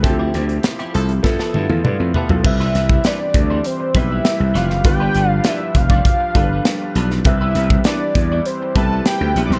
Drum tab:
CC |----------------|x---------------|----------------|----------------|
HH |x-xxxxxx--------|--x-x-x-x-x-x-x-|x-x-x-x-x-x-x-x-|x-x-x-x-x-x-x-x-|
SD |----o---oo------|-oo-o-------o-oo|----o-------o--o|----o-------o--o|
T1 |----------oo----|----------------|----------------|----------------|
T2 |------------o---|----------------|----------------|----------------|
FT |--------------oo|----------------|----------------|----------------|
BD |o-------o-------|o--o--o---o-----|o-----ooo-o-----|o--o--o---o-----|